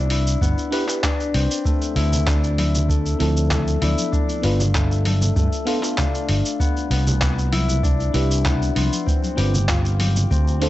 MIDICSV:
0, 0, Header, 1, 5, 480
1, 0, Start_track
1, 0, Key_signature, 0, "major"
1, 0, Tempo, 618557
1, 1280, Time_signature, 4, 2, 24, 8
1, 8298, End_track
2, 0, Start_track
2, 0, Title_t, "FM electric piano"
2, 0, Program_c, 0, 5
2, 548, Note_on_c, 0, 62, 98
2, 556, Note_on_c, 0, 64, 91
2, 563, Note_on_c, 0, 67, 86
2, 570, Note_on_c, 0, 71, 100
2, 647, Note_off_c, 0, 62, 0
2, 651, Note_off_c, 0, 64, 0
2, 654, Note_off_c, 0, 67, 0
2, 658, Note_off_c, 0, 71, 0
2, 669, Note_on_c, 0, 62, 72
2, 676, Note_on_c, 0, 64, 67
2, 691, Note_on_c, 0, 71, 78
2, 811, Note_off_c, 0, 62, 0
2, 815, Note_off_c, 0, 64, 0
2, 822, Note_off_c, 0, 71, 0
2, 2473, Note_on_c, 0, 60, 92
2, 2480, Note_on_c, 0, 64, 80
2, 2489, Note_on_c, 0, 53, 83
2, 2498, Note_on_c, 0, 69, 98
2, 2929, Note_off_c, 0, 60, 0
2, 2932, Note_off_c, 0, 64, 0
2, 2936, Note_off_c, 0, 53, 0
2, 2941, Note_off_c, 0, 69, 0
2, 2952, Note_on_c, 0, 59, 74
2, 2960, Note_on_c, 0, 62, 65
2, 2969, Note_on_c, 0, 53, 64
2, 2977, Note_on_c, 0, 74, 76
2, 3408, Note_off_c, 0, 59, 0
2, 3412, Note_off_c, 0, 62, 0
2, 3417, Note_off_c, 0, 53, 0
2, 3421, Note_off_c, 0, 74, 0
2, 3429, Note_on_c, 0, 59, 93
2, 3440, Note_on_c, 0, 62, 83
2, 3447, Note_on_c, 0, 65, 86
2, 3453, Note_on_c, 0, 71, 102
2, 3574, Note_off_c, 0, 59, 0
2, 3579, Note_off_c, 0, 62, 0
2, 3583, Note_off_c, 0, 65, 0
2, 3585, Note_off_c, 0, 71, 0
2, 4386, Note_on_c, 0, 59, 101
2, 4394, Note_on_c, 0, 62, 88
2, 4404, Note_on_c, 0, 65, 93
2, 4409, Note_on_c, 0, 69, 111
2, 4486, Note_off_c, 0, 59, 0
2, 4490, Note_off_c, 0, 62, 0
2, 4495, Note_off_c, 0, 65, 0
2, 4498, Note_off_c, 0, 69, 0
2, 4506, Note_on_c, 0, 59, 75
2, 4514, Note_on_c, 0, 62, 67
2, 4521, Note_on_c, 0, 65, 66
2, 4530, Note_on_c, 0, 69, 85
2, 4649, Note_off_c, 0, 59, 0
2, 4654, Note_off_c, 0, 62, 0
2, 4657, Note_off_c, 0, 65, 0
2, 4661, Note_off_c, 0, 69, 0
2, 6305, Note_on_c, 0, 62, 92
2, 6314, Note_on_c, 0, 64, 85
2, 6320, Note_on_c, 0, 67, 83
2, 6327, Note_on_c, 0, 71, 100
2, 6764, Note_off_c, 0, 62, 0
2, 6769, Note_off_c, 0, 64, 0
2, 6772, Note_off_c, 0, 67, 0
2, 6775, Note_off_c, 0, 71, 0
2, 6794, Note_on_c, 0, 62, 69
2, 6803, Note_on_c, 0, 53, 64
2, 6811, Note_on_c, 0, 84, 82
2, 7249, Note_off_c, 0, 62, 0
2, 7254, Note_off_c, 0, 53, 0
2, 7257, Note_off_c, 0, 84, 0
2, 7261, Note_on_c, 0, 60, 95
2, 7269, Note_on_c, 0, 62, 87
2, 7274, Note_on_c, 0, 65, 87
2, 7285, Note_on_c, 0, 71, 103
2, 7410, Note_off_c, 0, 60, 0
2, 7414, Note_off_c, 0, 62, 0
2, 7416, Note_off_c, 0, 65, 0
2, 7421, Note_off_c, 0, 71, 0
2, 8224, Note_on_c, 0, 60, 94
2, 8231, Note_on_c, 0, 62, 95
2, 8238, Note_on_c, 0, 65, 93
2, 8246, Note_on_c, 0, 69, 108
2, 8298, Note_off_c, 0, 60, 0
2, 8298, Note_off_c, 0, 62, 0
2, 8298, Note_off_c, 0, 65, 0
2, 8298, Note_off_c, 0, 69, 0
2, 8298, End_track
3, 0, Start_track
3, 0, Title_t, "Harp"
3, 0, Program_c, 1, 46
3, 0, Note_on_c, 1, 59, 77
3, 0, Note_on_c, 1, 62, 78
3, 0, Note_on_c, 1, 64, 107
3, 80, Note_off_c, 1, 64, 0
3, 83, Note_on_c, 1, 64, 73
3, 316, Note_off_c, 1, 59, 0
3, 320, Note_on_c, 1, 59, 82
3, 560, Note_on_c, 1, 71, 99
3, 797, Note_off_c, 1, 62, 0
3, 800, Note_on_c, 1, 62, 100
3, 1039, Note_on_c, 1, 60, 92
3, 1086, Note_off_c, 1, 59, 0
3, 1086, Note_off_c, 1, 71, 0
3, 1280, Note_on_c, 1, 57, 71
3, 1518, Note_off_c, 1, 64, 0
3, 1521, Note_on_c, 1, 64, 102
3, 1758, Note_off_c, 1, 62, 0
3, 1761, Note_on_c, 1, 62, 78
3, 2001, Note_off_c, 1, 64, 0
3, 2004, Note_on_c, 1, 64, 74
3, 2236, Note_off_c, 1, 57, 0
3, 2239, Note_on_c, 1, 57, 83
3, 2476, Note_off_c, 1, 57, 0
3, 2479, Note_on_c, 1, 57, 75
3, 2718, Note_off_c, 1, 57, 0
3, 2721, Note_on_c, 1, 57, 74
3, 2956, Note_off_c, 1, 64, 0
3, 2959, Note_on_c, 1, 64, 104
3, 3195, Note_off_c, 1, 62, 0
3, 3198, Note_on_c, 1, 62, 81
3, 3367, Note_off_c, 1, 60, 0
3, 3442, Note_on_c, 1, 65, 80
3, 3489, Note_off_c, 1, 64, 0
3, 3678, Note_off_c, 1, 57, 0
3, 3681, Note_on_c, 1, 57, 72
3, 3921, Note_off_c, 1, 57, 0
3, 3924, Note_on_c, 1, 57, 74
3, 4156, Note_off_c, 1, 57, 0
3, 4159, Note_on_c, 1, 57, 85
3, 4392, Note_off_c, 1, 65, 0
3, 4395, Note_on_c, 1, 65, 106
3, 4636, Note_off_c, 1, 62, 0
3, 4639, Note_on_c, 1, 62, 77
3, 4874, Note_off_c, 1, 65, 0
3, 4877, Note_on_c, 1, 65, 72
3, 5119, Note_on_c, 1, 59, 78
3, 5355, Note_off_c, 1, 59, 0
3, 5358, Note_on_c, 1, 59, 78
3, 5593, Note_off_c, 1, 59, 0
3, 5596, Note_on_c, 1, 59, 80
3, 5836, Note_on_c, 1, 64, 101
3, 5883, Note_off_c, 1, 65, 0
3, 6074, Note_off_c, 1, 62, 0
3, 6077, Note_on_c, 1, 62, 87
3, 6313, Note_off_c, 1, 64, 0
3, 6316, Note_on_c, 1, 64, 81
3, 6551, Note_off_c, 1, 59, 0
3, 6555, Note_on_c, 1, 59, 81
3, 6742, Note_off_c, 1, 57, 0
3, 6788, Note_off_c, 1, 59, 0
3, 6791, Note_on_c, 1, 59, 77
3, 7031, Note_on_c, 1, 60, 77
3, 7078, Note_off_c, 1, 59, 0
3, 7272, Note_on_c, 1, 67, 108
3, 7515, Note_on_c, 1, 65, 75
3, 7562, Note_off_c, 1, 64, 0
3, 7754, Note_off_c, 1, 67, 0
3, 7757, Note_on_c, 1, 67, 71
3, 7994, Note_off_c, 1, 60, 0
3, 7997, Note_on_c, 1, 60, 82
3, 8238, Note_on_c, 1, 72, 102
3, 8249, Note_off_c, 1, 62, 0
3, 8298, Note_off_c, 1, 60, 0
3, 8298, Note_off_c, 1, 65, 0
3, 8298, Note_off_c, 1, 67, 0
3, 8298, Note_off_c, 1, 72, 0
3, 8298, End_track
4, 0, Start_track
4, 0, Title_t, "Fretless electric bass"
4, 0, Program_c, 2, 35
4, 0, Note_on_c, 2, 36, 95
4, 272, Note_off_c, 2, 36, 0
4, 321, Note_on_c, 2, 31, 79
4, 412, Note_off_c, 2, 31, 0
4, 1044, Note_on_c, 2, 36, 86
4, 1134, Note_off_c, 2, 36, 0
4, 1520, Note_on_c, 2, 38, 103
4, 2433, Note_off_c, 2, 38, 0
4, 2486, Note_on_c, 2, 38, 81
4, 2916, Note_off_c, 2, 38, 0
4, 2964, Note_on_c, 2, 38, 90
4, 3054, Note_off_c, 2, 38, 0
4, 3444, Note_on_c, 2, 31, 105
4, 4115, Note_off_c, 2, 31, 0
4, 4162, Note_on_c, 2, 43, 93
4, 4253, Note_off_c, 2, 43, 0
4, 4882, Note_on_c, 2, 31, 91
4, 4973, Note_off_c, 2, 31, 0
4, 5358, Note_on_c, 2, 36, 99
4, 6272, Note_off_c, 2, 36, 0
4, 6317, Note_on_c, 2, 36, 91
4, 6752, Note_off_c, 2, 36, 0
4, 6798, Note_on_c, 2, 36, 84
4, 6891, Note_off_c, 2, 36, 0
4, 7279, Note_on_c, 2, 31, 106
4, 7953, Note_off_c, 2, 31, 0
4, 8001, Note_on_c, 2, 38, 103
4, 8298, Note_off_c, 2, 38, 0
4, 8298, End_track
5, 0, Start_track
5, 0, Title_t, "Drums"
5, 79, Note_on_c, 9, 46, 89
5, 156, Note_off_c, 9, 46, 0
5, 210, Note_on_c, 9, 82, 67
5, 287, Note_off_c, 9, 82, 0
5, 322, Note_on_c, 9, 36, 105
5, 329, Note_on_c, 9, 82, 59
5, 399, Note_off_c, 9, 36, 0
5, 406, Note_off_c, 9, 82, 0
5, 450, Note_on_c, 9, 82, 36
5, 528, Note_off_c, 9, 82, 0
5, 562, Note_on_c, 9, 46, 87
5, 640, Note_off_c, 9, 46, 0
5, 684, Note_on_c, 9, 39, 31
5, 691, Note_on_c, 9, 82, 70
5, 762, Note_off_c, 9, 39, 0
5, 768, Note_off_c, 9, 82, 0
5, 802, Note_on_c, 9, 36, 99
5, 804, Note_on_c, 9, 39, 102
5, 811, Note_on_c, 9, 82, 58
5, 880, Note_off_c, 9, 36, 0
5, 881, Note_off_c, 9, 39, 0
5, 888, Note_off_c, 9, 82, 0
5, 932, Note_on_c, 9, 82, 35
5, 1009, Note_off_c, 9, 82, 0
5, 1043, Note_on_c, 9, 46, 86
5, 1120, Note_off_c, 9, 46, 0
5, 1172, Note_on_c, 9, 82, 73
5, 1250, Note_off_c, 9, 82, 0
5, 1283, Note_on_c, 9, 36, 101
5, 1288, Note_on_c, 9, 82, 54
5, 1361, Note_off_c, 9, 36, 0
5, 1365, Note_off_c, 9, 82, 0
5, 1409, Note_on_c, 9, 82, 36
5, 1487, Note_off_c, 9, 82, 0
5, 1522, Note_on_c, 9, 46, 83
5, 1599, Note_off_c, 9, 46, 0
5, 1649, Note_on_c, 9, 64, 81
5, 1651, Note_on_c, 9, 82, 67
5, 1726, Note_off_c, 9, 64, 0
5, 1729, Note_off_c, 9, 82, 0
5, 1763, Note_on_c, 9, 39, 99
5, 1765, Note_on_c, 9, 36, 105
5, 1770, Note_on_c, 9, 82, 58
5, 1840, Note_off_c, 9, 39, 0
5, 1842, Note_off_c, 9, 36, 0
5, 1847, Note_off_c, 9, 82, 0
5, 1892, Note_on_c, 9, 82, 35
5, 1969, Note_off_c, 9, 82, 0
5, 2004, Note_on_c, 9, 63, 86
5, 2005, Note_on_c, 9, 46, 83
5, 2082, Note_off_c, 9, 46, 0
5, 2082, Note_off_c, 9, 63, 0
5, 2133, Note_on_c, 9, 82, 70
5, 2138, Note_on_c, 9, 64, 71
5, 2210, Note_off_c, 9, 82, 0
5, 2215, Note_off_c, 9, 64, 0
5, 2246, Note_on_c, 9, 36, 107
5, 2252, Note_on_c, 9, 82, 57
5, 2323, Note_off_c, 9, 36, 0
5, 2329, Note_off_c, 9, 82, 0
5, 2372, Note_on_c, 9, 82, 34
5, 2450, Note_off_c, 9, 82, 0
5, 2485, Note_on_c, 9, 46, 83
5, 2562, Note_off_c, 9, 46, 0
5, 2614, Note_on_c, 9, 82, 68
5, 2692, Note_off_c, 9, 82, 0
5, 2722, Note_on_c, 9, 39, 92
5, 2725, Note_on_c, 9, 36, 100
5, 2729, Note_on_c, 9, 82, 54
5, 2735, Note_on_c, 9, 64, 75
5, 2800, Note_off_c, 9, 39, 0
5, 2802, Note_off_c, 9, 36, 0
5, 2807, Note_off_c, 9, 82, 0
5, 2813, Note_off_c, 9, 64, 0
5, 2851, Note_on_c, 9, 82, 34
5, 2929, Note_off_c, 9, 82, 0
5, 2963, Note_on_c, 9, 46, 78
5, 2970, Note_on_c, 9, 63, 66
5, 3041, Note_off_c, 9, 46, 0
5, 3048, Note_off_c, 9, 63, 0
5, 3090, Note_on_c, 9, 82, 71
5, 3167, Note_off_c, 9, 82, 0
5, 3205, Note_on_c, 9, 36, 96
5, 3208, Note_on_c, 9, 82, 51
5, 3282, Note_off_c, 9, 36, 0
5, 3285, Note_off_c, 9, 82, 0
5, 3330, Note_on_c, 9, 82, 35
5, 3408, Note_off_c, 9, 82, 0
5, 3441, Note_on_c, 9, 46, 90
5, 3519, Note_off_c, 9, 46, 0
5, 3571, Note_on_c, 9, 82, 66
5, 3572, Note_on_c, 9, 64, 82
5, 3649, Note_off_c, 9, 64, 0
5, 3649, Note_off_c, 9, 82, 0
5, 3684, Note_on_c, 9, 36, 103
5, 3685, Note_on_c, 9, 39, 98
5, 3692, Note_on_c, 9, 82, 55
5, 3762, Note_off_c, 9, 36, 0
5, 3762, Note_off_c, 9, 39, 0
5, 3769, Note_off_c, 9, 82, 0
5, 3813, Note_on_c, 9, 82, 33
5, 3891, Note_off_c, 9, 82, 0
5, 3922, Note_on_c, 9, 46, 87
5, 3923, Note_on_c, 9, 63, 90
5, 3999, Note_off_c, 9, 46, 0
5, 4001, Note_off_c, 9, 63, 0
5, 4046, Note_on_c, 9, 64, 77
5, 4049, Note_on_c, 9, 82, 64
5, 4124, Note_off_c, 9, 64, 0
5, 4127, Note_off_c, 9, 82, 0
5, 4163, Note_on_c, 9, 36, 111
5, 4164, Note_on_c, 9, 82, 52
5, 4241, Note_off_c, 9, 36, 0
5, 4242, Note_off_c, 9, 82, 0
5, 4287, Note_on_c, 9, 82, 32
5, 4364, Note_off_c, 9, 82, 0
5, 4398, Note_on_c, 9, 46, 88
5, 4476, Note_off_c, 9, 46, 0
5, 4522, Note_on_c, 9, 39, 29
5, 4529, Note_on_c, 9, 82, 64
5, 4600, Note_off_c, 9, 39, 0
5, 4606, Note_off_c, 9, 82, 0
5, 4639, Note_on_c, 9, 39, 97
5, 4642, Note_on_c, 9, 36, 104
5, 4646, Note_on_c, 9, 82, 59
5, 4647, Note_on_c, 9, 64, 83
5, 4716, Note_off_c, 9, 39, 0
5, 4720, Note_off_c, 9, 36, 0
5, 4723, Note_off_c, 9, 82, 0
5, 4725, Note_off_c, 9, 64, 0
5, 4770, Note_on_c, 9, 82, 33
5, 4848, Note_off_c, 9, 82, 0
5, 4878, Note_on_c, 9, 46, 85
5, 4955, Note_off_c, 9, 46, 0
5, 5009, Note_on_c, 9, 82, 66
5, 5086, Note_off_c, 9, 82, 0
5, 5121, Note_on_c, 9, 36, 99
5, 5128, Note_on_c, 9, 82, 53
5, 5199, Note_off_c, 9, 36, 0
5, 5206, Note_off_c, 9, 82, 0
5, 5250, Note_on_c, 9, 82, 35
5, 5328, Note_off_c, 9, 82, 0
5, 5362, Note_on_c, 9, 46, 98
5, 5440, Note_off_c, 9, 46, 0
5, 5488, Note_on_c, 9, 82, 66
5, 5489, Note_on_c, 9, 64, 88
5, 5566, Note_off_c, 9, 82, 0
5, 5567, Note_off_c, 9, 64, 0
5, 5598, Note_on_c, 9, 39, 104
5, 5601, Note_on_c, 9, 36, 102
5, 5605, Note_on_c, 9, 82, 54
5, 5675, Note_off_c, 9, 39, 0
5, 5679, Note_off_c, 9, 36, 0
5, 5682, Note_off_c, 9, 82, 0
5, 5730, Note_on_c, 9, 82, 33
5, 5808, Note_off_c, 9, 82, 0
5, 5840, Note_on_c, 9, 46, 93
5, 5842, Note_on_c, 9, 63, 85
5, 5917, Note_off_c, 9, 46, 0
5, 5920, Note_off_c, 9, 63, 0
5, 5962, Note_on_c, 9, 64, 74
5, 5969, Note_on_c, 9, 82, 59
5, 6039, Note_off_c, 9, 64, 0
5, 6047, Note_off_c, 9, 82, 0
5, 6080, Note_on_c, 9, 36, 107
5, 6085, Note_on_c, 9, 82, 55
5, 6157, Note_off_c, 9, 36, 0
5, 6163, Note_off_c, 9, 82, 0
5, 6208, Note_on_c, 9, 82, 30
5, 6286, Note_off_c, 9, 82, 0
5, 6318, Note_on_c, 9, 46, 98
5, 6396, Note_off_c, 9, 46, 0
5, 6449, Note_on_c, 9, 82, 64
5, 6527, Note_off_c, 9, 82, 0
5, 6560, Note_on_c, 9, 36, 98
5, 6560, Note_on_c, 9, 39, 106
5, 6566, Note_on_c, 9, 64, 97
5, 6567, Note_on_c, 9, 82, 55
5, 6637, Note_off_c, 9, 39, 0
5, 6638, Note_off_c, 9, 36, 0
5, 6644, Note_off_c, 9, 64, 0
5, 6644, Note_off_c, 9, 82, 0
5, 6689, Note_on_c, 9, 82, 34
5, 6767, Note_off_c, 9, 82, 0
5, 6799, Note_on_c, 9, 46, 93
5, 6804, Note_on_c, 9, 63, 54
5, 6877, Note_off_c, 9, 46, 0
5, 6882, Note_off_c, 9, 63, 0
5, 6928, Note_on_c, 9, 82, 65
5, 7005, Note_off_c, 9, 82, 0
5, 7040, Note_on_c, 9, 36, 99
5, 7047, Note_on_c, 9, 82, 50
5, 7117, Note_off_c, 9, 36, 0
5, 7125, Note_off_c, 9, 82, 0
5, 7159, Note_on_c, 9, 63, 60
5, 7168, Note_on_c, 9, 82, 34
5, 7237, Note_off_c, 9, 63, 0
5, 7246, Note_off_c, 9, 82, 0
5, 7278, Note_on_c, 9, 46, 97
5, 7356, Note_off_c, 9, 46, 0
5, 7404, Note_on_c, 9, 64, 91
5, 7408, Note_on_c, 9, 82, 70
5, 7482, Note_off_c, 9, 64, 0
5, 7486, Note_off_c, 9, 82, 0
5, 7516, Note_on_c, 9, 39, 107
5, 7519, Note_on_c, 9, 36, 108
5, 7523, Note_on_c, 9, 82, 54
5, 7594, Note_off_c, 9, 39, 0
5, 7597, Note_off_c, 9, 36, 0
5, 7601, Note_off_c, 9, 82, 0
5, 7645, Note_on_c, 9, 82, 33
5, 7723, Note_off_c, 9, 82, 0
5, 7758, Note_on_c, 9, 46, 98
5, 7762, Note_on_c, 9, 63, 82
5, 7835, Note_off_c, 9, 46, 0
5, 7840, Note_off_c, 9, 63, 0
5, 7882, Note_on_c, 9, 64, 76
5, 7885, Note_on_c, 9, 82, 68
5, 7960, Note_off_c, 9, 64, 0
5, 7963, Note_off_c, 9, 82, 0
5, 8000, Note_on_c, 9, 36, 114
5, 8004, Note_on_c, 9, 82, 52
5, 8078, Note_off_c, 9, 36, 0
5, 8081, Note_off_c, 9, 82, 0
5, 8129, Note_on_c, 9, 82, 32
5, 8206, Note_off_c, 9, 82, 0
5, 8238, Note_on_c, 9, 46, 96
5, 8298, Note_off_c, 9, 46, 0
5, 8298, End_track
0, 0, End_of_file